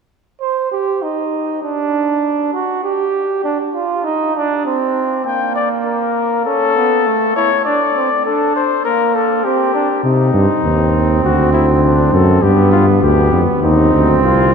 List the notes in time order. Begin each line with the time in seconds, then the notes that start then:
0.41 C5
0.72 G4
1.02 D#4
1.63 D4
2.54 F#4
2.83 G4
3.44 D4
3.75 F4
4.05 D#4
4.35 D4
4.66 C4
5.25 A#3 G5
5.56 D5
5.86 A#4
6.46 C#4 A4
6.76 B3
7.07 A3
7.36 E4 C#5
7.65 D4 D5
7.96 C4
8.26 D4 A4
8.56 C5
8.85 A#3 A#4
9.15 A4
9.45 C4 G4
9.74 D4
10.03 C3 C4 D#4
10.34 G2
10.64 D#2
11.23 D2 F#4
11.53 E4
11.83 D4
12.12 F#2 A4
12.42 G2 B3 G4
12.72 F4
13.02 D2 B3 G4
13.33 F2
13.63 D#2 C4 D#4
13.93 D2
14.23 C2 F4